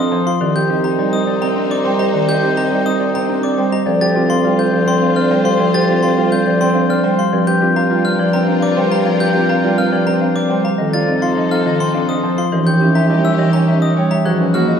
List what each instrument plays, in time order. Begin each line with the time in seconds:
Already playing: bassoon F2, grand piano C4, violin section D#4 A4, clean electric guitar D#5, glockenspiel D#6
0.11 marimba F3, grand piano C5, clean electric guitar A5
0.26 grand piano F4, clean electric guitar F5, glockenspiel C6
0.41 bassoon C2, marimba D#3, grand piano C4, violin section D#4 C5, clean electric guitar D5
0.55 grand piano G4, clean electric guitar C5, glockenspiel G6
0.70 marimba C4, grand piano D#4, clean electric guitar G4
0.84 grand piano G4, clean electric guitar D#5, glockenspiel A#5
0.99 marimba G3, grand piano D#4, clean electric guitar D5
1.13 grand piano C4, clean electric guitar D#5, glockenspiel D#6
1.27 grand piano G4, clean electric guitar D5
1.41 grand piano C4, clean electric guitar G5, glockenspiel A#5
1.56 marimba C4, grand piano D4, clean electric guitar D#5
1.71 grand piano C4, clean electric guitar D5, glockenspiel D6
1.85 marimba G3, grand piano C5, clean electric guitar G5
1.99 grand piano G4, clean electric guitar D#5, glockenspiel A#5
2.14 marimba D#3, grand piano C4, clean electric guitar D5
2.28 grand piano G4, clean electric guitar C5, glockenspiel G6
2.43 marimba C4, grand piano D#4, clean electric guitar G4
2.57 grand piano G4, clean electric guitar D#5, glockenspiel A#5
2.71 marimba G3, grand piano D#4, clean electric guitar D5
2.86 grand piano C4, clean electric guitar D#5, glockenspiel D#6
3.00 grand piano G4, clean electric guitar D5
3.14 grand piano C4, clean electric guitar G5, glockenspiel A#5
3.29 marimba C4, grand piano D4, clean electric guitar D#5
3.43 grand piano C4, clean electric guitar D5, glockenspiel D6
3.58 marimba G3, grand piano C5, clean electric guitar G5
3.72 grand piano G4, clean electric guitar D#5, glockenspiel A#5
3.86 bassoon D2, marimba F3, grand piano C4, violin section F4 C5, clean electric guitar D5
4.01 grand piano G4, clean electric guitar C5, glockenspiel A6
4.15 marimba C4, grand piano F4, clean electric guitar G4
4.30 grand piano G4, clean electric guitar F5, glockenspiel C6
4.44 marimba G3, grand piano F4, clean electric guitar D5
4.59 grand piano C4, clean electric guitar F5, glockenspiel G6
4.73 marimba F3, grand piano G4, clean electric guitar D5
4.87 grand piano C4, clean electric guitar G5, glockenspiel C6
5.02 marimba C4, grand piano D4, clean electric guitar F5
5.16 grand piano C4, clean electric guitar D5, glockenspiel F6
5.31 marimba G3, grand piano C5, clean electric guitar G5
5.45 grand piano G4, clean electric guitar F5, glockenspiel C6
5.60 marimba F3, grand piano C4, clean electric guitar D5
5.74 grand piano G4, clean electric guitar C5, glockenspiel A6
5.89 marimba C4, grand piano F4, clean electric guitar G4
6.03 grand piano G4, clean electric guitar F5, glockenspiel C6
6.17 marimba G3, grand piano F4, clean electric guitar D5
6.32 grand piano C4, clean electric guitar F5, glockenspiel G6
6.46 marimba F3, grand piano G4, clean electric guitar D5
6.61 grand piano C4, clean electric guitar G5, glockenspiel C6
6.75 marimba C4, grand piano D4, clean electric guitar F5
6.89 grand piano C4, clean electric guitar D5, glockenspiel F6
7.04 marimba G3, grand piano C5, clean electric guitar G5
7.18 grand piano G4, clean electric guitar F5, glockenspiel C6
7.33 bassoon G2, marimba F3, grand piano C4, violin section F4 A#4, clean electric guitar D5
7.47 grand piano G4, clean electric guitar C5, glockenspiel G6
7.62 marimba C4, grand piano F4, clean electric guitar G4
7.76 grand piano G4, clean electric guitar F5, glockenspiel A#5
7.90 marimba G3, grand piano F4, clean electric guitar D5
8.05 grand piano C4, clean electric guitar F5, glockenspiel F6
8.19 marimba F3, grand piano G4, clean electric guitar D5
8.33 grand piano C4, clean electric guitar G5, glockenspiel A#5
8.48 marimba C4, grand piano D4, clean electric guitar F5
8.62 grand piano C4, clean electric guitar D5, glockenspiel D6
8.77 marimba G3, grand piano C5, clean electric guitar G5
8.91 grand piano G4, clean electric guitar F5, glockenspiel A#5
9.05 marimba F3, grand piano C4, clean electric guitar D5
9.20 grand piano G4, clean electric guitar C5, glockenspiel G6
9.35 marimba C4, grand piano F4, clean electric guitar G4
9.49 grand piano G4, clean electric guitar F5, glockenspiel A#5
9.63 marimba G3, grand piano F4, clean electric guitar D5
9.77 grand piano C4, clean electric guitar F5, glockenspiel F6
9.92 marimba F3, grand piano G4, clean electric guitar D5
10.06 grand piano C4, clean electric guitar G5, glockenspiel A#5
10.21 marimba C4, grand piano D4, clean electric guitar F5
10.35 grand piano C4, clean electric guitar D5, glockenspiel D6
10.50 marimba G3, grand piano C5, clean electric guitar G5
10.64 grand piano G4, clean electric guitar F5, glockenspiel A#5
10.78 bassoon F2, marimba D#3, grand piano C4, violin section D#4 A4, clean electric guitar D#5
10.93 grand piano F4, clean electric guitar D5, glockenspiel A6
11.08 marimba C4, grand piano D#4, clean electric guitar A4
11.22 grand piano F4, clean electric guitar F5, glockenspiel C6
11.37 marimba F3, grand piano D#4, clean electric guitar D#5
11.51 grand piano C4, clean electric guitar F5, glockenspiel F6
11.66 marimba D#3, grand piano F4, clean electric guitar D#5
11.80 grand piano C4, clean electric guitar A5, glockenspiel C6
11.94 marimba C4, grand piano D4, clean electric guitar F5
12.09 grand piano C4, clean electric guitar D#5, glockenspiel D#6
12.23 marimba F3, grand piano C5, clean electric guitar A5
12.38 grand piano F4, clean electric guitar F5, glockenspiel C6
12.52 bassoon D#2, marimba E3, grand piano C#4, violin section C#4 G4, clean electric guitar D#5
12.67 grand piano G4, clean electric guitar C#5, glockenspiel G6
12.81 marimba C#4, grand piano E4, clean electric guitar G4
12.95 grand piano G4, clean electric guitar E5, glockenspiel A#5
13.10 marimba G3, grand piano E4, clean electric guitar D#5
13.25 grand piano C#4, clean electric guitar E5, glockenspiel E6
13.39 marimba E3, grand piano G4, clean electric guitar D#5
13.53 grand piano C#4, clean electric guitar G5, glockenspiel A#5
13.68 marimba C#4, grand piano D#4, clean electric guitar E5
13.82 grand piano C#4, clean electric guitar D#5, glockenspiel D#6
13.97 marimba G3, grand piano C#5, clean electric guitar G5
14.11 grand piano G4, clean electric guitar E5, glockenspiel A#5
14.25 bassoon G#2, marimba F3, violin section F#4 B4, grand piano F#4, clean electric guitar C#5, glockenspiel F#6
14.40 grand piano C#4, clean electric guitar B4
14.54 marimba A#3, grand piano F#4, clean electric guitar G#4, glockenspiel F6
14.68 grand piano F4, clean electric guitar D#5